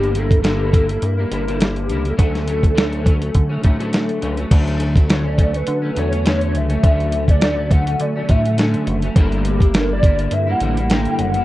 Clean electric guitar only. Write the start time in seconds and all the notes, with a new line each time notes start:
Already playing: G2 D3 G3 A#3 E4
0.14 D3 G3 A#3 E4
0.42 G2 D3 G3 A#3 E4
0.71 D3 G3 A#3 E4
0.88 G3 A#3 E4
1.17 G3 A#3 E4
1.31 D3 G3 A#3 E4
1.47 G2 D3 G3 A#3 E4
1.89 D3 G3 A#3 E4
2.05 G3 A#3 E4
2.17 D3 F#3 A3 C#4
2.46 D3 F#3 A3 C#4
2.75 D3 F#3 A3 C#4
3.03 D3 F#3 A3 C#4
3.19 F#3 A3 C#4
3.49 F#3 A3 C#4
3.61 D3 F#3 A3 C#4
3.79 D3 F#3 A3 C#4
4.21 D3 F#3 A3 C#4
4.37 F#3 A3 C#4
4.50 D3 F#3 A3 C#4
4.96 F#3 A3 C#4
5.08 D3 F#3 A3 C#4
5.23 F#3 A3 C#4
5.37 D3 F#3 A3 C#4
5.53 F#3 A3 C#4
5.82 F#3 A3 C#4
5.95 D3 F#3 A3 C#4
6.11 F#3 A3 C#4
6.25 D3 F#3 A3 C#4
6.69 F#3 A3 C#4
6.83 D3 F#3 A3 C#4
7.28 F#3 A3 C#4
7.41 D3 F#3 A3 C#4
7.57 F#3 A3 C#4
7.70 D3 F#3 A3 C#4
7.86 F#3 A3 C#4
8.16 F#3 A3 C#4
8.28 D3 F#3 A3 C#4
8.44 F#3 A3 C#4
8.57 D3 F#3 A3 C#4
9.03 F#3 A3 C#4
9.16 G2 D3 G3 A#3 E4
9.61 G3 A#3 E4
9.73 G2 D3 G3 A#3 E4
9.89 G3 A#3 E4
10.02 D3 G3 A#3 E4
10.47 G3 A#3 E4
10.61 D3 G3 A#3 E4
10.77 G3 A#3 E4
10.90 G2 D3 G3 A#3 E4
11.35 G3 A#3 E4